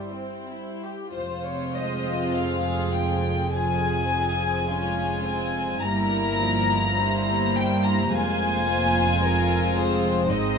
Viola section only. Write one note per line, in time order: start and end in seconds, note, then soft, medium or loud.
0.00 0.88 G3 soft
0.00 0.88 E4 soft
1.14 3.47 G#3 medium
1.14 3.47 C4 medium
3.52 4.09 F3 medium
3.52 4.65 C4 medium
4.10 4.66 F3 medium
4.68 5.80 G#3 medium
4.68 5.25 C#4 medium
5.25 5.82 C4 medium
5.83 6.40 G3 medium
5.83 6.97 A#3 medium
6.40 6.98 F3 medium
6.99 8.11 G3 medium
6.99 8.65 A#3 medium
8.12 8.66 G#3 medium
8.66 9.21 A#3 medium
9.21 10.58 G#3 medium
9.21 10.58 C4 medium